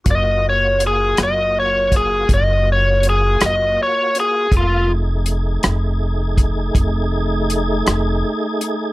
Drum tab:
HH |x-xx-xx-xx-x|x-xx-xx-xx-x|
SD |---r-----r--|---r-----r--|
BD |o----oo-----|o----oo-----|